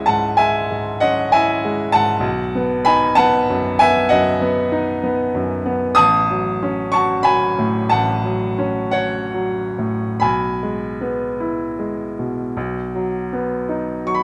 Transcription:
0.00 0.32 C#2 medium
0.00 0.39 G#3 soft
0.00 1.02 C#4 soft
0.00 1.34 E4 medium
0.00 2.27 C#5 medium
0.00 1.01 D#5 medium
0.00 0.38 E5 medium
0.00 0.08 F#5 medium
0.00 0.37 G#5 medium
0.06 0.58 G#2 soft
0.06 0.37 F#5 medium
0.06 0.38 A5 medium
0.37 0.90 G#3 soft
0.37 0.98 E5 medium
0.37 1.01 G#5 medium
0.71 1.21 G#2 soft
1.00 1.52 C#4 medium
1.00 1.30 D#5 medium
1.00 1.32 F#5 medium
1.32 1.83 E4 medium
1.32 1.90 E5 medium
1.32 1.94 G#5 loud
1.65 2.13 G#3 medium
1.92 2.25 G#2 medium
1.92 2.82 F#5 medium
1.92 2.86 A5 loud
2.20 4.05 B1 medium
2.55 3.05 B3 medium
2.85 3.36 D#4 medium
2.85 3.15 G#5 medium
2.85 3.17 B5 loud
3.15 3.67 B3 medium
3.15 3.76 F#5 medium
3.15 3.79 A5 loud
3.49 3.99 F#2 medium
3.79 4.30 B3 medium
3.79 4.09 E5 medium
3.79 4.11 G#5 loud
4.09 4.59 F#2 medium
4.09 5.61 D#5 medium
4.09 5.64 F#5 loud
4.41 4.90 B3 medium
4.72 5.22 D#4 medium
5.03 5.53 B3 medium
5.35 5.85 F#2 medium
5.65 5.97 B3 medium
5.95 7.86 A1 medium
5.95 6.88 A5 medium
5.95 6.92 D#6 loud
6.30 6.81 F#3 medium
6.63 7.13 C#4 medium
6.92 7.45 F#4 medium
6.92 7.23 A5 medium
6.92 7.24 C#6 loud
7.23 7.78 F#3 medium
7.23 7.87 G#5 medium
7.23 7.90 B5 loud
7.59 8.11 A2 medium
7.90 10.17 A1 medium
7.90 8.90 F#5 medium
7.90 8.93 A5 loud
8.24 8.79 F#3 medium
8.58 9.17 C#4 medium
8.91 9.59 F#4 medium
8.91 10.16 C#5 medium
8.91 10.20 F#5 medium
9.34 10.04 F#3 medium
9.78 10.22 A2 soft
10.20 12.52 B1 medium
10.20 14.03 G#5 medium
10.20 14.06 B5 medium
10.63 11.24 G#3 soft
11.01 11.63 B3 soft
11.40 12.02 E4 medium
11.79 12.41 G#3 soft
12.19 12.56 B2 soft
12.57 14.23 B1 medium
12.95 13.54 F#3 soft
13.33 13.91 B3 medium
13.69 14.23 D#4 soft
14.05 14.23 F#3 soft
14.05 14.15 C#6 medium
14.14 14.23 B5 medium

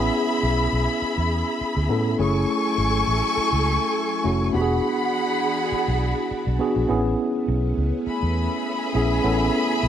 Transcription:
0.00 1.89 B3 loud
0.00 1.89 C#4 medium
0.00 1.90 E4 medium
0.00 2.15 G#4 medium
0.00 2.21 G#4 loud
0.00 2.15 E5 medium
0.00 2.15 B5 loud
0.43 0.67 B1 loud
0.73 0.86 B1 medium
1.02 muted fingered electric bass stroke soft
1.18 1.42 E2 medium
1.61 muted fingered electric bass stroke soft
1.77 1.88 D2 medium
1.89 2.14 A2 loud
1.89 2.17 B3 medium
1.89 2.17 C#4 medium
1.89 2.18 E4 medium
1.89 2.18 A4 loud
2.19 2.43 F#1 loud
2.19 4.52 F#3 medium
2.19 3.28 A3 medium
2.19 4.52 A3 medium
2.19 3.29 C#4 medium
2.19 4.52 E4 medium
2.19 3.29 E4 medium
2.19 3.29 G#4 loud
2.19 4.51 A4 loud
2.19 6.86 G#5 medium
2.19 4.51 G#5 medium
2.19 4.51 C#6 loud
2.78 3.02 G#1 medium
3.07 3.21 A1 medium
3.37 muted fingered electric bass stroke soft
3.53 3.77 C#2 medium
4.24 4.49 F1 medium
4.24 4.52 A3 medium
4.24 4.52 C#4 medium
4.24 4.52 E4 medium
4.24 4.53 F#4 medium
4.53 4.78 E1 loud
4.53 6.88 E3 medium
4.53 5.63 B3 loud
4.53 5.63 D4 loud
4.53 6.88 D4 medium
4.53 5.64 F#4 medium
4.53 6.88 F#4 medium
4.53 4.62 G4 medium
4.53 6.86 G#4 medium
4.53 6.86 F#5 loud
4.53 6.86 B5 medium
4.62 5.67 G#4 loud
5.72 muted fingered electric bass stroke medium
5.88 6.12 B1 medium
6.31 muted fingered electric bass stroke soft
6.47 6.58 B1 medium
6.59 6.87 B3 medium
6.59 6.87 D4 medium
6.59 6.88 F#4 medium
6.59 6.88 G#4 loud
6.76 6.87 A#1 medium
6.89 7.14 A1 loud
6.89 9.88 A3 medium
6.89 7.98 B3 loud
6.89 9.88 B3 medium
6.89 7.99 C#4 medium
6.89 9.88 C#4 loud
6.89 7.99 E4 loud
6.89 7.99 G#4 medium
7.48 7.72 B1 loud
7.77 7.90 C#2 medium
8.07 9.88 G#4 loud
8.07 9.88 E5 medium
8.07 9.88 B5 loud
8.07 muted fingered electric bass stroke medium
8.23 8.47 E2 medium
8.94 9.19 A#1 medium
8.94 9.22 B3 medium
8.94 9.22 C#4 medium
8.94 9.23 E4 medium
8.94 9.23 G#4 loud
9.24 9.48 A1 loud
9.24 9.88 B3 loud
9.24 9.88 C#4 loud
9.24 9.88 E4 medium
9.24 9.88 A4 loud
9.83 9.88 B1 medium

